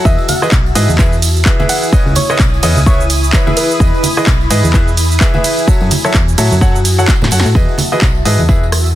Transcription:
Already playing: F#4
0.05 E2 E3 E4 G#4 B4 D#5 E5, kick, tambourine, shaker
0.18 tambourine
0.28 F#5, open hi-hat, ride, tambourine, high conga, shaker
0.42 E3 E4 G#4 B4 D#5, cross-stick, tambourine, shaker
0.52 B1, kick, clap, tambourine, shaker
0.66 tambourine
0.75 G#2 E3 E4 G#4 B4 D#5, open hi-hat, ride, tambourine, shaker
0.89 E2 G#5 D#6, tambourine, high conga, shaker
0.98 E3 E4 G#4 B4 E5, kick, clap, tambourine, shaker
1.12 tambourine, shaker
1.22 open hi-hat, ride, tambourine, shaker
1.36 tambourine, shaker
1.45 E3 E4 G#4 B4 E5, kick, clap, tambourine, shaker
1.59 E3 E4 G#4 B4 E5, tambourine, high conga
1.69 F#5, open hi-hat, ride, tambourine, shaker
1.83 F#5, tambourine, shaker
1.93 C#3 E4 B4 C#5 D#5, kick, tambourine, shaker
2.06 C#2, tambourine
2.15 C#5, open hi-hat, ride, tambourine, high conga, shaker
2.23 B5
2.29 C#3 E4 B4 C#5 D#5, cross-stick, tambourine, shaker
2.39 B1, kick, clap, tambourine, shaker
2.54 tambourine
2.63 E2 C#3 E4 B4 C#5 D#5, open hi-hat, ride, tambourine, shaker
2.77 C#2, tambourine, high conga, shaker
2.86 C#3 E4 B4 C#5 E5, kick, tambourine, shaker
3.00 tambourine, shaker
3.10 open hi-hat, ride, tambourine, shaker
3.23 tambourine, shaker
3.33 E3 E4 B4 C#5 E5, kick, clap, tambourine, shaker
3.47 E3 E4 G#4 B4 E5, tambourine, high conga
3.57 B4, open hi-hat, ride, tambourine, shaker
3.71 tambourine, shaker
3.80 E2 E3 E4 G#4 B4 D#5, kick, tambourine, shaker
3.95 tambourine
4.03 open hi-hat, ride, tambourine, high conga, shaker
4.17 E3 E4 G#4 B4 D#5, cross-stick, tambourine, shaker
4.27 B1, kick, clap, tambourine, shaker
4.41 tambourine
4.50 G#2 E3 E4 G#4 B4 D#5 G#5, open hi-hat, ride, tambourine, shaker
4.64 E2, tambourine, high conga, shaker
4.73 E3 E4 G#4 B4 E5, kick, clap, tambourine, shaker
4.88 tambourine, shaker
4.97 open hi-hat, ride, tambourine, shaker
5.11 tambourine, shaker
5.20 E3 E4 G#4 B4 E5, kick, clap, tambourine, shaker
5.34 E3 E4 G#4 B4 E5, tambourine, high conga
5.44 open hi-hat, ride, tambourine, shaker
5.58 tambourine, shaker
5.68 F#3 F#4 A4 C#5 E5, kick, tambourine, shaker
5.80 F#2, tambourine
5.91 open hi-hat, ride, tambourine, high conga, shaker
6.04 F#3 F#4 A4 C#5 E5, cross-stick, tambourine, shaker
6.14 E2, kick, clap, tambourine, shaker
6.28 tambourine, shaker
6.38 A2 F#3 F#4 A4 C#5 E5, open hi-hat, ride, tambourine, shaker
6.51 F#2, tambourine, high conga, shaker
6.61 F#3 F#4 A4 C#5 F#5, kick, tambourine, shaker
6.76 tambourine, shaker
6.85 open hi-hat, ride, tambourine, shaker
6.98 F#3 F#4 A4 C#5 F#5, tambourine, shaker
7.08 kick, snare, clap, tambourine, shaker
7.21 A2, snare, tambourine, high conga
7.31 F#2 F#4 A4 C#5 F#5, open hi-hat, ride, tambourine, shaker
7.40 snare
7.45 A2, tambourine, shaker
7.55 E2 E3 E4 G#4 B4 D#5, kick, tambourine
7.69 tambourine
7.78 open hi-hat, tambourine, high conga
7.92 E3 E4 G#4 B4 D#5, tambourine
7.99 B1 D#6, kick, clap, tambourine
8.15 tambourine
8.25 G#2 E3 E4 G#4 B4 D#5, open hi-hat, tambourine
8.39 E2 G#5, tambourine, high conga
8.49 E3 E4 G#4 B4 E5, kick, tambourine
8.63 tambourine
8.72 cross-stick, open hi-hat, tambourine
8.86 tambourine

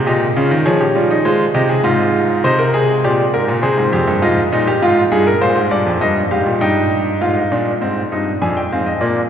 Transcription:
0.07 A#2 G4 D#5
0.37 C#3 F4
0.51 D#3
0.66 F3 G#4 C#5
0.81 G4
0.96 G3 F4
1.11 D#4
1.25 G#3 F4 C5
1.54 C3 G4 D#5
1.69 G#4
1.84 G#2 F4
2.44 C3 C5 D#5
2.59 A#4
2.74 G#4
3.04 A#2 G4 D5
3.33 G#2 A#4
3.48 A#2
3.62 C3 G#4 C5
3.78 G#2
3.93 F2 G4
4.07 G2
4.22 G#2 F4 D#5
4.52 A#2 D#4
4.67 G4
4.82 G#2 F4 F5
5.12 G2 G#4
5.27 A#4
5.41 A#2 C5 F5
5.56 G#2
5.71 G2 D5
5.87 F2
6.01 G2 D#5
6.31 G#2 G4 F5
6.46 A#2
6.61 G2 D#4 G5
7.21 G#2 F4 F5
7.37 D#4
7.52 A#2 D4
7.82 G#2 C4
8.12 G2 D#4
8.41 F2 D4 G#5
8.57 G5
8.72 G#2 C4 F5
8.86 D#5
9.01 A#2 A#3 D5

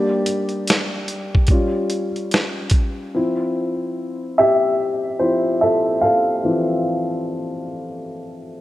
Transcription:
Already playing: G3 A#3 D4 G4 D5
0.26 closed hi-hat
0.49 closed hi-hat
0.67 snare, closed hi-hat
1.08 closed hi-hat
1.35 kick
1.47 G3, kick, closed hi-hat
1.51 C#4 F4
1.90 closed hi-hat
2.16 closed hi-hat
2.31 snare, closed hi-hat
2.70 kick, closed hi-hat
3.14 F3 C4 E4
4.38 G4 E5
5.20 F3 C4 E4 C5
5.61 A4 E5
6.01 A4 F5
6.43 E3 F3 C4

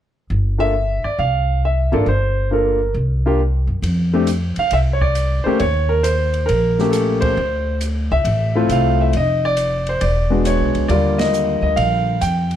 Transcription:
0.30 G1
0.58 A#3 D4 F4 A4 E5
1.04 D5, muted upright bass stroke
1.19 C2 F5
1.65 E5
1.92 G#1 A#3 D4 F4 A4 D5
2.06 G1 C5
2.51 A#3 D4 F4 A4 A#4
2.94 C2
3.26 A#3 D4 F4 G4
3.67 F#2
3.82 F2, ride
4.13 A3 C4 D4 G4
4.27 hi-hat pedal, ride
4.56 F5, muted upright bass stroke, ride
4.71 C2 E5, ride
4.93 C#5
5.01 D5, kick
5.15 hi-hat pedal, ride
5.44 A3 A#3 C#4 G4 C5, muted upright bass stroke
5.60 D#2 C#5, ride
5.89 A#4
6.03 C5, hi-hat pedal, ride
6.34 ride
6.46 A#1 A#4, ride
6.79 A3 A#3 C#4 G4, snare
6.91 A4, hi-hat pedal, ride
7.21 C5, kick, ride
7.37 D2
7.81 hi-hat pedal, ride
8.11 C#2 E5
8.25 A1, ride
8.55 A3 C4 E4 F4
8.69 C2 F5, hi-hat pedal, ride
9.01 E5
9.13 F1 D#5, ride
9.45 D5
9.57 hi-hat pedal, ride
9.87 C5, ride
10.01 E1 D5, ride
10.30 G#3 B3 D4 F#4
10.45 C#5, hi-hat pedal, ride
10.61 B1
10.75 C#2, ride
10.88 D#2 D3 G3 A#3 F4 D5, ride
11.18 D#5, snare, ride
11.34 hi-hat pedal
11.62 D2 D#5
11.76 A#1 F5, ride
12.21 F2 G5, hi-hat pedal, ride
12.51 ride

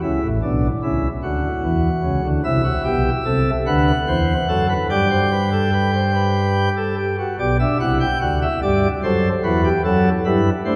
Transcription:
0.02 C#2 C#3 E4
0.22 A1 A2
0.42 B1 B2 D4
0.83 C#2 C#3 E4
1.23 D2 D3 F#4
1.63 E2 E3
2.03 C#2 C#3
2.24 D2 D3
2.44 C2 C3 E4 E5
2.64 F#4
2.84 B1 B2 G4
3.25 C2 C3 A4
3.66 D2 D3 B4 F#5
4.07 E2 E3 C5
4.48 F#2 F#3 A4
4.69 B4
4.90 G2 G3 D5 G5
5.10 C5
5.32 B4
5.52 A4
5.73 B4
5.94 C5
6.15 B4
6.77 A4
6.98 G4
7.18 F#4
7.39 B1 B2 G4 D5
7.59 D4 E5
7.80 C2 C3 E4 F#5
8.00 G5
8.21 D2 D3 F#4 F#5
8.42 E5
8.62 G2 G3 G4 D5
9.03 F#2 F#3 A4 C5
9.44 E2 E3 F#4 B4
9.64 G4
9.84 F#2 F#3 F#4 A4
10.25 G2 G3 E4 B4
10.65 A3 D4 C5

